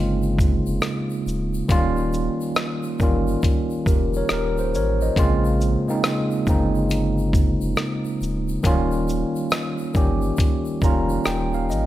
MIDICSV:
0, 0, Header, 1, 4, 480
1, 0, Start_track
1, 0, Tempo, 869565
1, 933, Time_signature, 4, 2, 24, 8
1, 6548, End_track
2, 0, Start_track
2, 0, Title_t, "Tine electric piano"
2, 0, Program_c, 0, 4
2, 0, Control_c, 0, 64, 127
2, 0, Note_on_c, 0, 49, 78
2, 0, Note_on_c, 0, 56, 72
2, 0, Note_on_c, 0, 58, 65
2, 0, Note_on_c, 0, 60, 73
2, 0, Note_on_c, 0, 63, 84
2, 0, Note_on_c, 0, 65, 86
2, 435, Note_off_c, 0, 49, 0
2, 436, Note_off_c, 0, 56, 0
2, 438, Note_off_c, 0, 58, 0
2, 439, Note_off_c, 0, 60, 0
2, 441, Note_off_c, 0, 65, 0
2, 930, Note_on_c, 0, 51, 101
2, 933, Note_on_c, 0, 55, 97
2, 938, Note_on_c, 0, 58, 99
2, 941, Note_off_c, 0, 63, 0
2, 941, Control_c, 0, 64, 0
2, 941, Note_on_c, 0, 61, 87
2, 946, Note_on_c, 0, 65, 121
2, 1031, Control_c, 0, 64, 127
2, 1463, Note_off_c, 0, 51, 0
2, 1465, Note_off_c, 0, 55, 0
2, 1467, Note_off_c, 0, 58, 0
2, 1469, Note_off_c, 0, 61, 0
2, 1472, Note_off_c, 0, 65, 0
2, 1658, Note_on_c, 0, 51, 78
2, 1662, Note_on_c, 0, 55, 72
2, 1666, Note_on_c, 0, 58, 68
2, 1668, Note_on_c, 0, 61, 69
2, 1674, Note_on_c, 0, 65, 87
2, 2032, Note_off_c, 0, 51, 0
2, 2034, Note_off_c, 0, 55, 0
2, 2036, Note_off_c, 0, 58, 0
2, 2037, Note_off_c, 0, 61, 0
2, 2040, Note_off_c, 0, 65, 0
2, 2137, Note_on_c, 0, 70, 60
2, 2139, Note_on_c, 0, 67, 53
2, 2280, Note_off_c, 0, 70, 0
2, 2282, Note_off_c, 0, 67, 0
2, 2300, Note_on_c, 0, 73, 61
2, 2304, Note_on_c, 0, 70, 51
2, 2376, Note_off_c, 0, 73, 0
2, 2378, Note_off_c, 0, 70, 0
2, 2389, Note_on_c, 0, 70, 66
2, 2391, Note_on_c, 0, 67, 57
2, 2527, Note_off_c, 0, 70, 0
2, 2528, Note_off_c, 0, 67, 0
2, 2534, Note_on_c, 0, 72, 65
2, 2613, Note_off_c, 0, 72, 0
2, 2624, Note_on_c, 0, 73, 63
2, 2630, Note_on_c, 0, 70, 54
2, 2764, Note_off_c, 0, 73, 0
2, 2767, Note_off_c, 0, 70, 0
2, 2772, Note_on_c, 0, 75, 62
2, 2774, Note_on_c, 0, 72, 47
2, 2852, Note_on_c, 0, 49, 108
2, 2854, Note_on_c, 0, 56, 91
2, 2857, Note_on_c, 0, 58, 99
2, 2859, Control_c, 0, 64, 0
2, 2863, Note_on_c, 0, 60, 92
2, 2865, Note_on_c, 0, 65, 117
2, 2951, Control_c, 0, 64, 127
2, 2997, Note_off_c, 0, 75, 0
2, 2998, Note_off_c, 0, 72, 0
2, 3118, Note_off_c, 0, 49, 0
2, 3119, Note_off_c, 0, 56, 0
2, 3121, Note_off_c, 0, 58, 0
2, 3124, Note_off_c, 0, 60, 0
2, 3125, Note_off_c, 0, 65, 0
2, 3246, Note_on_c, 0, 49, 76
2, 3248, Note_on_c, 0, 56, 72
2, 3252, Note_on_c, 0, 58, 68
2, 3257, Note_on_c, 0, 60, 76
2, 3259, Note_on_c, 0, 63, 89
2, 3501, Note_off_c, 0, 49, 0
2, 3502, Note_off_c, 0, 56, 0
2, 3504, Note_off_c, 0, 58, 0
2, 3506, Note_off_c, 0, 60, 0
2, 3507, Note_off_c, 0, 63, 0
2, 3572, Note_on_c, 0, 49, 76
2, 3575, Note_on_c, 0, 56, 66
2, 3580, Note_on_c, 0, 58, 76
2, 3582, Note_on_c, 0, 60, 72
2, 3587, Note_on_c, 0, 63, 89
2, 4274, Note_off_c, 0, 49, 0
2, 4275, Note_off_c, 0, 56, 0
2, 4278, Note_off_c, 0, 58, 0
2, 4279, Note_off_c, 0, 60, 0
2, 4281, Note_off_c, 0, 63, 0
2, 4765, Note_on_c, 0, 51, 111
2, 4772, Note_on_c, 0, 54, 76
2, 4775, Note_on_c, 0, 58, 93
2, 4780, Control_c, 0, 64, 0
2, 4781, Note_on_c, 0, 61, 98
2, 4784, Note_on_c, 0, 65, 111
2, 4809, Note_on_c, 0, 55, 92
2, 4818, Note_off_c, 0, 54, 0
2, 4881, Control_c, 0, 64, 127
2, 5301, Note_off_c, 0, 51, 0
2, 5306, Note_off_c, 0, 58, 0
2, 5309, Note_off_c, 0, 61, 0
2, 5311, Note_off_c, 0, 65, 0
2, 5323, Note_off_c, 0, 55, 0
2, 5487, Note_on_c, 0, 51, 75
2, 5492, Note_on_c, 0, 55, 65
2, 5497, Note_on_c, 0, 58, 69
2, 5500, Note_on_c, 0, 61, 72
2, 5503, Note_on_c, 0, 67, 91
2, 5867, Note_off_c, 0, 51, 0
2, 5869, Note_off_c, 0, 55, 0
2, 5871, Note_off_c, 0, 58, 0
2, 5873, Note_off_c, 0, 61, 0
2, 5875, Note_off_c, 0, 67, 0
2, 5975, Note_on_c, 0, 51, 82
2, 5979, Note_on_c, 0, 55, 70
2, 5983, Note_on_c, 0, 58, 83
2, 5984, Note_on_c, 0, 82, 75
2, 5987, Note_on_c, 0, 61, 76
2, 5992, Note_on_c, 0, 65, 93
2, 6202, Note_off_c, 0, 82, 0
2, 6215, Note_on_c, 0, 79, 69
2, 6357, Note_off_c, 0, 79, 0
2, 6372, Note_on_c, 0, 77, 70
2, 6450, Note_off_c, 0, 77, 0
2, 6458, Note_on_c, 0, 75, 67
2, 6506, Note_off_c, 0, 51, 0
2, 6508, Note_off_c, 0, 55, 0
2, 6510, Note_off_c, 0, 58, 0
2, 6512, Note_off_c, 0, 61, 0
2, 6514, Note_off_c, 0, 65, 0
2, 6548, Note_off_c, 0, 75, 0
2, 6548, End_track
3, 0, Start_track
3, 0, Title_t, "Sub bass"
3, 0, Program_c, 1, 38
3, 0, Note_on_c, 1, 31, 91
3, 345, Note_off_c, 1, 31, 0
3, 371, Note_on_c, 1, 29, 82
3, 442, Note_off_c, 1, 29, 0
3, 698, Note_on_c, 1, 26, 89
3, 898, Note_off_c, 1, 26, 0
3, 934, Note_on_c, 1, 27, 106
3, 1265, Note_off_c, 1, 27, 0
3, 1656, Note_on_c, 1, 31, 90
3, 1857, Note_off_c, 1, 31, 0
3, 2133, Note_on_c, 1, 29, 89
3, 2335, Note_off_c, 1, 29, 0
3, 2378, Note_on_c, 1, 27, 98
3, 2616, Note_on_c, 1, 33, 82
3, 2624, Note_off_c, 1, 27, 0
3, 2817, Note_off_c, 1, 33, 0
3, 2852, Note_on_c, 1, 34, 115
3, 3184, Note_off_c, 1, 34, 0
3, 3571, Note_on_c, 1, 31, 85
3, 4183, Note_off_c, 1, 31, 0
3, 4207, Note_on_c, 1, 29, 80
3, 4280, Note_off_c, 1, 29, 0
3, 4534, Note_on_c, 1, 26, 86
3, 4735, Note_off_c, 1, 26, 0
3, 4770, Note_on_c, 1, 27, 105
3, 5103, Note_off_c, 1, 27, 0
3, 5493, Note_on_c, 1, 31, 86
3, 5695, Note_off_c, 1, 31, 0
3, 5974, Note_on_c, 1, 29, 80
3, 6175, Note_off_c, 1, 29, 0
3, 6217, Note_on_c, 1, 27, 99
3, 6457, Note_on_c, 1, 33, 82
3, 6466, Note_off_c, 1, 27, 0
3, 6548, Note_off_c, 1, 33, 0
3, 6548, End_track
4, 0, Start_track
4, 0, Title_t, "Drums"
4, 124, Note_on_c, 9, 82, 48
4, 179, Note_off_c, 9, 82, 0
4, 213, Note_on_c, 9, 36, 93
4, 214, Note_on_c, 9, 82, 48
4, 220, Note_off_c, 9, 82, 0
4, 220, Note_on_c, 9, 82, 47
4, 268, Note_off_c, 9, 36, 0
4, 276, Note_off_c, 9, 82, 0
4, 366, Note_on_c, 9, 82, 53
4, 421, Note_off_c, 9, 82, 0
4, 446, Note_on_c, 9, 82, 58
4, 453, Note_on_c, 9, 37, 102
4, 459, Note_on_c, 9, 42, 58
4, 502, Note_off_c, 9, 82, 0
4, 508, Note_off_c, 9, 37, 0
4, 514, Note_off_c, 9, 42, 0
4, 608, Note_on_c, 9, 82, 45
4, 663, Note_off_c, 9, 82, 0
4, 699, Note_on_c, 9, 82, 50
4, 707, Note_off_c, 9, 82, 0
4, 707, Note_on_c, 9, 82, 43
4, 762, Note_off_c, 9, 82, 0
4, 849, Note_on_c, 9, 82, 53
4, 904, Note_off_c, 9, 82, 0
4, 933, Note_on_c, 9, 82, 66
4, 934, Note_on_c, 9, 36, 102
4, 941, Note_on_c, 9, 42, 76
4, 988, Note_off_c, 9, 82, 0
4, 989, Note_off_c, 9, 36, 0
4, 996, Note_off_c, 9, 42, 0
4, 1085, Note_on_c, 9, 82, 47
4, 1140, Note_off_c, 9, 82, 0
4, 1171, Note_on_c, 9, 82, 51
4, 1180, Note_off_c, 9, 82, 0
4, 1180, Note_on_c, 9, 82, 44
4, 1235, Note_off_c, 9, 82, 0
4, 1329, Note_on_c, 9, 82, 51
4, 1384, Note_off_c, 9, 82, 0
4, 1409, Note_on_c, 9, 82, 65
4, 1415, Note_on_c, 9, 37, 103
4, 1418, Note_on_c, 9, 42, 61
4, 1465, Note_off_c, 9, 82, 0
4, 1470, Note_off_c, 9, 37, 0
4, 1473, Note_off_c, 9, 42, 0
4, 1562, Note_on_c, 9, 82, 47
4, 1617, Note_off_c, 9, 82, 0
4, 1650, Note_on_c, 9, 82, 50
4, 1655, Note_on_c, 9, 36, 85
4, 1659, Note_off_c, 9, 82, 0
4, 1659, Note_on_c, 9, 82, 37
4, 1710, Note_off_c, 9, 36, 0
4, 1715, Note_off_c, 9, 82, 0
4, 1807, Note_on_c, 9, 82, 42
4, 1862, Note_off_c, 9, 82, 0
4, 1888, Note_on_c, 9, 82, 66
4, 1894, Note_on_c, 9, 36, 88
4, 1901, Note_on_c, 9, 42, 75
4, 1943, Note_off_c, 9, 82, 0
4, 1949, Note_off_c, 9, 36, 0
4, 1956, Note_off_c, 9, 42, 0
4, 2044, Note_on_c, 9, 82, 43
4, 2099, Note_off_c, 9, 82, 0
4, 2132, Note_on_c, 9, 36, 93
4, 2133, Note_on_c, 9, 82, 47
4, 2138, Note_off_c, 9, 82, 0
4, 2138, Note_on_c, 9, 82, 47
4, 2187, Note_off_c, 9, 36, 0
4, 2193, Note_off_c, 9, 82, 0
4, 2283, Note_on_c, 9, 82, 52
4, 2339, Note_off_c, 9, 82, 0
4, 2365, Note_on_c, 9, 82, 60
4, 2369, Note_on_c, 9, 37, 101
4, 2375, Note_on_c, 9, 42, 57
4, 2420, Note_off_c, 9, 82, 0
4, 2424, Note_off_c, 9, 37, 0
4, 2430, Note_off_c, 9, 42, 0
4, 2526, Note_on_c, 9, 82, 45
4, 2581, Note_off_c, 9, 82, 0
4, 2617, Note_on_c, 9, 82, 49
4, 2619, Note_off_c, 9, 82, 0
4, 2619, Note_on_c, 9, 82, 41
4, 2674, Note_off_c, 9, 82, 0
4, 2766, Note_on_c, 9, 82, 53
4, 2821, Note_off_c, 9, 82, 0
4, 2850, Note_on_c, 9, 36, 99
4, 2853, Note_on_c, 9, 82, 64
4, 2855, Note_on_c, 9, 42, 78
4, 2906, Note_off_c, 9, 36, 0
4, 2908, Note_off_c, 9, 82, 0
4, 2911, Note_off_c, 9, 42, 0
4, 3006, Note_on_c, 9, 82, 43
4, 3061, Note_off_c, 9, 82, 0
4, 3094, Note_on_c, 9, 82, 49
4, 3097, Note_off_c, 9, 82, 0
4, 3097, Note_on_c, 9, 82, 41
4, 3152, Note_off_c, 9, 82, 0
4, 3251, Note_on_c, 9, 82, 59
4, 3306, Note_off_c, 9, 82, 0
4, 3332, Note_on_c, 9, 82, 66
4, 3333, Note_on_c, 9, 37, 107
4, 3336, Note_on_c, 9, 42, 58
4, 3387, Note_off_c, 9, 82, 0
4, 3389, Note_off_c, 9, 37, 0
4, 3391, Note_off_c, 9, 42, 0
4, 3483, Note_on_c, 9, 82, 49
4, 3538, Note_off_c, 9, 82, 0
4, 3568, Note_on_c, 9, 82, 47
4, 3571, Note_on_c, 9, 36, 88
4, 3572, Note_off_c, 9, 82, 0
4, 3572, Note_on_c, 9, 82, 38
4, 3626, Note_off_c, 9, 36, 0
4, 3628, Note_off_c, 9, 82, 0
4, 3725, Note_on_c, 9, 82, 41
4, 3781, Note_off_c, 9, 82, 0
4, 3807, Note_on_c, 9, 82, 71
4, 3815, Note_on_c, 9, 42, 70
4, 3862, Note_off_c, 9, 82, 0
4, 3870, Note_off_c, 9, 42, 0
4, 3962, Note_on_c, 9, 82, 43
4, 4017, Note_off_c, 9, 82, 0
4, 4048, Note_on_c, 9, 36, 100
4, 4051, Note_on_c, 9, 82, 45
4, 4053, Note_off_c, 9, 82, 0
4, 4053, Note_on_c, 9, 82, 50
4, 4103, Note_off_c, 9, 36, 0
4, 4108, Note_off_c, 9, 82, 0
4, 4202, Note_on_c, 9, 82, 54
4, 4257, Note_off_c, 9, 82, 0
4, 4283, Note_on_c, 9, 82, 56
4, 4290, Note_on_c, 9, 37, 104
4, 4296, Note_on_c, 9, 42, 62
4, 4338, Note_off_c, 9, 82, 0
4, 4346, Note_off_c, 9, 37, 0
4, 4352, Note_off_c, 9, 42, 0
4, 4443, Note_on_c, 9, 82, 47
4, 4498, Note_off_c, 9, 82, 0
4, 4532, Note_on_c, 9, 82, 49
4, 4542, Note_off_c, 9, 82, 0
4, 4542, Note_on_c, 9, 82, 43
4, 4597, Note_off_c, 9, 82, 0
4, 4683, Note_on_c, 9, 82, 52
4, 4738, Note_off_c, 9, 82, 0
4, 4766, Note_on_c, 9, 82, 65
4, 4769, Note_on_c, 9, 36, 92
4, 4775, Note_on_c, 9, 42, 70
4, 4821, Note_off_c, 9, 82, 0
4, 4824, Note_off_c, 9, 36, 0
4, 4830, Note_off_c, 9, 42, 0
4, 4921, Note_on_c, 9, 82, 45
4, 4976, Note_off_c, 9, 82, 0
4, 5010, Note_on_c, 9, 82, 50
4, 5019, Note_off_c, 9, 82, 0
4, 5019, Note_on_c, 9, 82, 42
4, 5074, Note_off_c, 9, 82, 0
4, 5165, Note_on_c, 9, 82, 53
4, 5220, Note_off_c, 9, 82, 0
4, 5246, Note_on_c, 9, 82, 70
4, 5254, Note_on_c, 9, 37, 109
4, 5257, Note_on_c, 9, 42, 60
4, 5301, Note_off_c, 9, 82, 0
4, 5310, Note_off_c, 9, 37, 0
4, 5312, Note_off_c, 9, 42, 0
4, 5398, Note_on_c, 9, 82, 48
4, 5453, Note_off_c, 9, 82, 0
4, 5486, Note_on_c, 9, 82, 49
4, 5491, Note_on_c, 9, 36, 93
4, 5496, Note_off_c, 9, 82, 0
4, 5496, Note_on_c, 9, 82, 37
4, 5546, Note_off_c, 9, 36, 0
4, 5551, Note_off_c, 9, 82, 0
4, 5640, Note_on_c, 9, 82, 42
4, 5695, Note_off_c, 9, 82, 0
4, 5722, Note_on_c, 9, 82, 67
4, 5732, Note_on_c, 9, 36, 88
4, 5740, Note_on_c, 9, 42, 72
4, 5778, Note_off_c, 9, 82, 0
4, 5787, Note_off_c, 9, 36, 0
4, 5796, Note_off_c, 9, 42, 0
4, 5880, Note_on_c, 9, 82, 43
4, 5935, Note_off_c, 9, 82, 0
4, 5969, Note_on_c, 9, 82, 49
4, 5971, Note_on_c, 9, 36, 98
4, 5980, Note_off_c, 9, 82, 0
4, 5980, Note_on_c, 9, 82, 48
4, 6026, Note_off_c, 9, 36, 0
4, 6035, Note_off_c, 9, 82, 0
4, 6123, Note_on_c, 9, 82, 55
4, 6178, Note_off_c, 9, 82, 0
4, 6206, Note_on_c, 9, 82, 58
4, 6213, Note_on_c, 9, 37, 93
4, 6219, Note_on_c, 9, 42, 57
4, 6262, Note_off_c, 9, 82, 0
4, 6268, Note_off_c, 9, 37, 0
4, 6274, Note_off_c, 9, 42, 0
4, 6366, Note_on_c, 9, 82, 41
4, 6421, Note_off_c, 9, 82, 0
4, 6456, Note_on_c, 9, 82, 48
4, 6465, Note_off_c, 9, 82, 0
4, 6465, Note_on_c, 9, 82, 43
4, 6520, Note_off_c, 9, 82, 0
4, 6548, End_track
0, 0, End_of_file